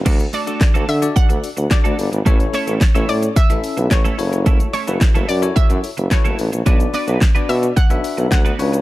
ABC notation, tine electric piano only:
X:1
M:4/4
L:1/16
Q:1/4=109
K:D
V:1 name="Tine electric piano"
z3 [DFAd]3 z [DFAd]3 z2 [DFAd]3 z | [CEAc]3 z2 [CEAc]3 z [CEAe]3 z2 [EFAc]2- | [EFAc]2 z [EFAB]3 z [EFAc]3 z2 [EFAB]3 z | [DFBd]3 z2 [DFBd]3 z [DFBe]3 z2 [DFBc]2 |]